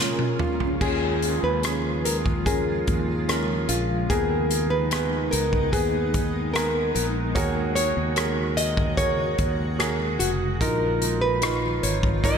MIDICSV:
0, 0, Header, 1, 7, 480
1, 0, Start_track
1, 0, Tempo, 826446
1, 472, Time_signature, 4, 2, 24, 8
1, 1907, Tempo, 814111
1, 7269, End_track
2, 0, Start_track
2, 0, Title_t, "Nylon-string guitar"
2, 0, Program_c, 0, 24
2, 0, Note_on_c, 0, 61, 54
2, 212, Note_off_c, 0, 61, 0
2, 232, Note_on_c, 0, 65, 47
2, 475, Note_on_c, 0, 68, 66
2, 480, Note_off_c, 0, 65, 0
2, 833, Note_off_c, 0, 68, 0
2, 835, Note_on_c, 0, 71, 69
2, 1171, Note_off_c, 0, 71, 0
2, 1192, Note_on_c, 0, 70, 69
2, 1257, Note_off_c, 0, 70, 0
2, 1429, Note_on_c, 0, 68, 73
2, 2122, Note_off_c, 0, 68, 0
2, 2146, Note_on_c, 0, 65, 67
2, 2387, Note_on_c, 0, 68, 70
2, 2394, Note_off_c, 0, 65, 0
2, 2742, Note_off_c, 0, 68, 0
2, 2744, Note_on_c, 0, 71, 81
2, 3100, Note_off_c, 0, 71, 0
2, 3103, Note_on_c, 0, 70, 68
2, 3345, Note_off_c, 0, 70, 0
2, 3347, Note_on_c, 0, 68, 87
2, 3822, Note_off_c, 0, 68, 0
2, 3824, Note_on_c, 0, 70, 81
2, 4050, Note_off_c, 0, 70, 0
2, 4068, Note_on_c, 0, 70, 74
2, 4132, Note_off_c, 0, 70, 0
2, 4305, Note_on_c, 0, 73, 82
2, 4536, Note_off_c, 0, 73, 0
2, 4543, Note_on_c, 0, 73, 86
2, 5022, Note_off_c, 0, 73, 0
2, 5024, Note_on_c, 0, 75, 94
2, 5260, Note_off_c, 0, 75, 0
2, 5262, Note_on_c, 0, 73, 103
2, 5981, Note_on_c, 0, 66, 75
2, 6005, Note_off_c, 0, 73, 0
2, 6047, Note_off_c, 0, 66, 0
2, 6227, Note_on_c, 0, 70, 92
2, 6581, Note_off_c, 0, 70, 0
2, 6583, Note_on_c, 0, 71, 92
2, 6945, Note_off_c, 0, 71, 0
2, 6947, Note_on_c, 0, 73, 87
2, 7190, Note_off_c, 0, 73, 0
2, 7192, Note_on_c, 0, 75, 92
2, 7269, Note_off_c, 0, 75, 0
2, 7269, End_track
3, 0, Start_track
3, 0, Title_t, "Grand piano"
3, 0, Program_c, 1, 0
3, 0, Control_c, 1, 64, 127
3, 0, Note_on_c, 1, 46, 47
3, 0, Note_on_c, 1, 53, 44
3, 0, Note_on_c, 1, 58, 53
3, 0, Note_on_c, 1, 61, 46
3, 0, Note_on_c, 1, 65, 62
3, 0, Note_on_c, 1, 68, 58
3, 446, Note_off_c, 1, 58, 0
3, 448, Note_off_c, 1, 61, 0
3, 449, Note_off_c, 1, 46, 0
3, 449, Note_off_c, 1, 65, 0
3, 450, Note_off_c, 1, 53, 0
3, 469, Note_on_c, 1, 61, 71
3, 472, Note_on_c, 1, 51, 45
3, 472, Note_on_c, 1, 65, 61
3, 473, Note_off_c, 1, 68, 0
3, 473, Note_on_c, 1, 68, 69
3, 478, Control_c, 1, 64, 0
3, 593, Control_c, 1, 64, 127
3, 928, Note_off_c, 1, 61, 0
3, 929, Note_off_c, 1, 65, 0
3, 930, Note_off_c, 1, 68, 0
3, 951, Note_on_c, 1, 61, 53
3, 952, Note_on_c, 1, 65, 51
3, 953, Note_on_c, 1, 68, 57
3, 1170, Note_off_c, 1, 51, 0
3, 1407, Note_off_c, 1, 61, 0
3, 1407, Note_off_c, 1, 65, 0
3, 1408, Note_off_c, 1, 68, 0
3, 1429, Note_on_c, 1, 61, 55
3, 1431, Note_on_c, 1, 65, 50
3, 1432, Note_on_c, 1, 70, 66
3, 1882, Note_off_c, 1, 61, 0
3, 1883, Note_off_c, 1, 65, 0
3, 1883, Note_off_c, 1, 70, 0
3, 1906, Note_on_c, 1, 61, 57
3, 1908, Note_on_c, 1, 65, 55
3, 1910, Note_on_c, 1, 70, 67
3, 2363, Note_off_c, 1, 61, 0
3, 2364, Note_off_c, 1, 65, 0
3, 2365, Note_off_c, 1, 70, 0
3, 2391, Note_on_c, 1, 51, 54
3, 2392, Note_on_c, 1, 59, 71
3, 2392, Note_on_c, 1, 68, 67
3, 2393, Note_on_c, 1, 70, 86
3, 2396, Control_c, 1, 64, 0
3, 2486, Control_c, 1, 64, 127
3, 2848, Note_off_c, 1, 59, 0
3, 2848, Note_off_c, 1, 68, 0
3, 2849, Note_off_c, 1, 70, 0
3, 2870, Note_on_c, 1, 59, 56
3, 2873, Note_on_c, 1, 68, 53
3, 3090, Note_off_c, 1, 51, 0
3, 3328, Note_off_c, 1, 59, 0
3, 3329, Note_off_c, 1, 68, 0
3, 3351, Note_on_c, 1, 59, 61
3, 3353, Note_on_c, 1, 68, 58
3, 3354, Note_on_c, 1, 71, 68
3, 3807, Note_off_c, 1, 59, 0
3, 3808, Note_off_c, 1, 68, 0
3, 3808, Note_off_c, 1, 71, 0
3, 3833, Note_on_c, 1, 59, 63
3, 3834, Note_on_c, 1, 68, 56
3, 3836, Note_on_c, 1, 70, 75
3, 4286, Note_off_c, 1, 59, 0
3, 4286, Note_off_c, 1, 68, 0
3, 4287, Note_off_c, 1, 70, 0
3, 4306, Note_on_c, 1, 66, 89
3, 4308, Note_on_c, 1, 51, 56
3, 4309, Note_on_c, 1, 68, 72
3, 4309, Note_on_c, 1, 70, 89
3, 4316, Control_c, 1, 64, 0
3, 4407, Control_c, 1, 64, 127
3, 4761, Note_off_c, 1, 66, 0
3, 4762, Note_off_c, 1, 70, 0
3, 4763, Note_off_c, 1, 68, 0
3, 4784, Note_on_c, 1, 66, 64
3, 4784, Note_on_c, 1, 68, 58
3, 4786, Note_on_c, 1, 70, 69
3, 5002, Note_off_c, 1, 51, 0
3, 5240, Note_off_c, 1, 66, 0
3, 5240, Note_off_c, 1, 68, 0
3, 5241, Note_off_c, 1, 70, 0
3, 5263, Note_on_c, 1, 66, 67
3, 5266, Note_on_c, 1, 68, 57
3, 5266, Note_on_c, 1, 70, 70
3, 5719, Note_off_c, 1, 66, 0
3, 5721, Note_off_c, 1, 68, 0
3, 5721, Note_off_c, 1, 70, 0
3, 5743, Note_on_c, 1, 66, 66
3, 5745, Note_on_c, 1, 68, 66
3, 5745, Note_on_c, 1, 70, 73
3, 6200, Note_off_c, 1, 66, 0
3, 6201, Note_off_c, 1, 68, 0
3, 6201, Note_off_c, 1, 70, 0
3, 6226, Note_on_c, 1, 63, 85
3, 6229, Note_on_c, 1, 65, 73
3, 6230, Note_on_c, 1, 70, 88
3, 6231, Control_c, 1, 64, 0
3, 6339, Control_c, 1, 64, 127
3, 6681, Note_off_c, 1, 63, 0
3, 6683, Note_off_c, 1, 65, 0
3, 6683, Note_off_c, 1, 70, 0
3, 6703, Note_on_c, 1, 63, 66
3, 6705, Note_on_c, 1, 65, 60
3, 7162, Note_off_c, 1, 63, 0
3, 7163, Note_off_c, 1, 65, 0
3, 7185, Note_on_c, 1, 63, 71
3, 7188, Note_on_c, 1, 65, 57
3, 7189, Note_on_c, 1, 70, 82
3, 7269, Note_off_c, 1, 63, 0
3, 7269, Note_off_c, 1, 65, 0
3, 7269, Note_off_c, 1, 70, 0
3, 7269, End_track
4, 0, Start_track
4, 0, Title_t, "Ambient pad"
4, 0, Program_c, 2, 92
4, 0, Note_on_c, 2, 56, 60
4, 0, Note_on_c, 2, 61, 63
4, 0, Note_on_c, 2, 65, 60
4, 0, Note_on_c, 2, 70, 74
4, 450, Note_off_c, 2, 70, 0
4, 455, Note_off_c, 2, 56, 0
4, 462, Note_off_c, 2, 61, 0
4, 463, Note_off_c, 2, 65, 0
4, 471, Note_on_c, 2, 56, 56
4, 472, Note_on_c, 2, 49, 70
4, 472, Note_on_c, 2, 53, 65
4, 473, Note_on_c, 2, 65, 75
4, 2368, Note_off_c, 2, 56, 0
4, 2369, Note_off_c, 2, 49, 0
4, 2369, Note_off_c, 2, 53, 0
4, 2369, Note_off_c, 2, 65, 0
4, 2384, Note_on_c, 2, 56, 64
4, 2384, Note_on_c, 2, 59, 72
4, 2385, Note_on_c, 2, 63, 78
4, 4287, Note_off_c, 2, 59, 0
4, 4288, Note_off_c, 2, 63, 0
4, 4307, Note_on_c, 2, 66, 78
4, 4308, Note_on_c, 2, 49, 74
4, 6199, Note_off_c, 2, 56, 0
4, 6205, Note_off_c, 2, 49, 0
4, 6205, Note_off_c, 2, 66, 0
4, 6217, Note_on_c, 2, 53, 70
4, 6218, Note_on_c, 2, 51, 70
4, 6218, Note_on_c, 2, 65, 85
4, 7269, Note_off_c, 2, 51, 0
4, 7269, Note_off_c, 2, 53, 0
4, 7269, Note_off_c, 2, 65, 0
4, 7269, End_track
5, 0, Start_track
5, 0, Title_t, "Fretless electric bass"
5, 0, Program_c, 3, 35
5, 470, Note_on_c, 3, 39, 70
5, 809, Note_off_c, 3, 39, 0
5, 832, Note_on_c, 3, 39, 70
5, 1646, Note_off_c, 3, 39, 0
5, 1672, Note_on_c, 3, 39, 82
5, 2125, Note_off_c, 3, 39, 0
5, 2145, Note_on_c, 3, 34, 81
5, 2370, Note_off_c, 3, 34, 0
5, 2388, Note_on_c, 3, 39, 79
5, 3088, Note_off_c, 3, 39, 0
5, 3114, Note_on_c, 3, 37, 75
5, 3336, Note_off_c, 3, 37, 0
5, 3350, Note_on_c, 3, 39, 80
5, 4046, Note_off_c, 3, 39, 0
5, 4072, Note_on_c, 3, 34, 77
5, 4293, Note_off_c, 3, 34, 0
5, 4309, Note_on_c, 3, 39, 88
5, 4643, Note_off_c, 3, 39, 0
5, 4670, Note_on_c, 3, 39, 96
5, 5482, Note_off_c, 3, 39, 0
5, 5505, Note_on_c, 3, 39, 98
5, 5962, Note_off_c, 3, 39, 0
5, 5986, Note_on_c, 3, 29, 84
5, 6209, Note_off_c, 3, 29, 0
5, 6225, Note_on_c, 3, 34, 99
5, 6922, Note_off_c, 3, 34, 0
5, 6947, Note_on_c, 3, 32, 82
5, 7269, Note_off_c, 3, 32, 0
5, 7269, End_track
6, 0, Start_track
6, 0, Title_t, "Reverse cymbal"
6, 0, Program_c, 4, 119
6, 7187, Note_on_c, 4, 60, 77
6, 7269, Note_off_c, 4, 60, 0
6, 7269, End_track
7, 0, Start_track
7, 0, Title_t, "Drums"
7, 110, Note_on_c, 9, 48, 41
7, 168, Note_off_c, 9, 48, 0
7, 229, Note_on_c, 9, 45, 62
7, 287, Note_off_c, 9, 45, 0
7, 351, Note_on_c, 9, 43, 60
7, 409, Note_off_c, 9, 43, 0
7, 471, Note_on_c, 9, 36, 85
7, 471, Note_on_c, 9, 49, 73
7, 529, Note_off_c, 9, 36, 0
7, 529, Note_off_c, 9, 49, 0
7, 711, Note_on_c, 9, 42, 54
7, 769, Note_off_c, 9, 42, 0
7, 949, Note_on_c, 9, 42, 61
7, 957, Note_on_c, 9, 37, 83
7, 1007, Note_off_c, 9, 42, 0
7, 1016, Note_off_c, 9, 37, 0
7, 1193, Note_on_c, 9, 42, 63
7, 1251, Note_off_c, 9, 42, 0
7, 1310, Note_on_c, 9, 36, 71
7, 1368, Note_off_c, 9, 36, 0
7, 1429, Note_on_c, 9, 36, 80
7, 1432, Note_on_c, 9, 42, 79
7, 1487, Note_off_c, 9, 36, 0
7, 1490, Note_off_c, 9, 42, 0
7, 1670, Note_on_c, 9, 42, 46
7, 1672, Note_on_c, 9, 36, 69
7, 1728, Note_off_c, 9, 42, 0
7, 1730, Note_off_c, 9, 36, 0
7, 1911, Note_on_c, 9, 42, 68
7, 1914, Note_on_c, 9, 37, 79
7, 1970, Note_off_c, 9, 42, 0
7, 1973, Note_off_c, 9, 37, 0
7, 2146, Note_on_c, 9, 42, 59
7, 2205, Note_off_c, 9, 42, 0
7, 2388, Note_on_c, 9, 36, 85
7, 2389, Note_on_c, 9, 42, 77
7, 2447, Note_off_c, 9, 36, 0
7, 2448, Note_off_c, 9, 42, 0
7, 2628, Note_on_c, 9, 42, 60
7, 2687, Note_off_c, 9, 42, 0
7, 2867, Note_on_c, 9, 42, 70
7, 2876, Note_on_c, 9, 37, 78
7, 2926, Note_off_c, 9, 42, 0
7, 2935, Note_off_c, 9, 37, 0
7, 3111, Note_on_c, 9, 42, 66
7, 3170, Note_off_c, 9, 42, 0
7, 3231, Note_on_c, 9, 36, 72
7, 3290, Note_off_c, 9, 36, 0
7, 3350, Note_on_c, 9, 36, 87
7, 3351, Note_on_c, 9, 42, 79
7, 3408, Note_off_c, 9, 36, 0
7, 3410, Note_off_c, 9, 42, 0
7, 3591, Note_on_c, 9, 42, 54
7, 3593, Note_on_c, 9, 36, 77
7, 3650, Note_off_c, 9, 42, 0
7, 3652, Note_off_c, 9, 36, 0
7, 3836, Note_on_c, 9, 42, 68
7, 3839, Note_on_c, 9, 37, 90
7, 3895, Note_off_c, 9, 42, 0
7, 3898, Note_off_c, 9, 37, 0
7, 4072, Note_on_c, 9, 42, 57
7, 4131, Note_off_c, 9, 42, 0
7, 4308, Note_on_c, 9, 36, 99
7, 4309, Note_on_c, 9, 42, 88
7, 4367, Note_off_c, 9, 36, 0
7, 4368, Note_off_c, 9, 42, 0
7, 4548, Note_on_c, 9, 42, 66
7, 4607, Note_off_c, 9, 42, 0
7, 4784, Note_on_c, 9, 42, 67
7, 4792, Note_on_c, 9, 37, 89
7, 4843, Note_off_c, 9, 42, 0
7, 4851, Note_off_c, 9, 37, 0
7, 5026, Note_on_c, 9, 42, 67
7, 5085, Note_off_c, 9, 42, 0
7, 5144, Note_on_c, 9, 36, 75
7, 5203, Note_off_c, 9, 36, 0
7, 5262, Note_on_c, 9, 36, 87
7, 5264, Note_on_c, 9, 42, 85
7, 5321, Note_off_c, 9, 36, 0
7, 5323, Note_off_c, 9, 42, 0
7, 5504, Note_on_c, 9, 42, 57
7, 5506, Note_on_c, 9, 36, 73
7, 5563, Note_off_c, 9, 42, 0
7, 5565, Note_off_c, 9, 36, 0
7, 5748, Note_on_c, 9, 42, 70
7, 5751, Note_on_c, 9, 37, 90
7, 5807, Note_off_c, 9, 42, 0
7, 5810, Note_off_c, 9, 37, 0
7, 5985, Note_on_c, 9, 42, 61
7, 6044, Note_off_c, 9, 42, 0
7, 6226, Note_on_c, 9, 36, 99
7, 6227, Note_on_c, 9, 42, 85
7, 6285, Note_off_c, 9, 36, 0
7, 6286, Note_off_c, 9, 42, 0
7, 6467, Note_on_c, 9, 42, 59
7, 6526, Note_off_c, 9, 42, 0
7, 6704, Note_on_c, 9, 42, 70
7, 6713, Note_on_c, 9, 37, 93
7, 6763, Note_off_c, 9, 42, 0
7, 6771, Note_off_c, 9, 37, 0
7, 6948, Note_on_c, 9, 42, 66
7, 7007, Note_off_c, 9, 42, 0
7, 7066, Note_on_c, 9, 36, 78
7, 7125, Note_off_c, 9, 36, 0
7, 7186, Note_on_c, 9, 36, 90
7, 7191, Note_on_c, 9, 42, 88
7, 7245, Note_off_c, 9, 36, 0
7, 7250, Note_off_c, 9, 42, 0
7, 7269, End_track
0, 0, End_of_file